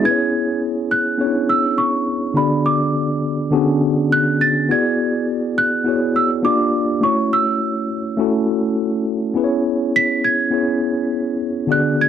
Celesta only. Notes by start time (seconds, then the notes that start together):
0.05 G#6
0.91 F#6
1.49 E6
1.78 C#6
2.37 B5
2.66 D6
4.12 F#6
4.41 A6
4.71 G#6
5.58 F#6
6.16 E6
6.45 D6
7.03 C#6
7.33 E6
9.96 B6
10.24 G#6
11.72 F#6
12.01 G#6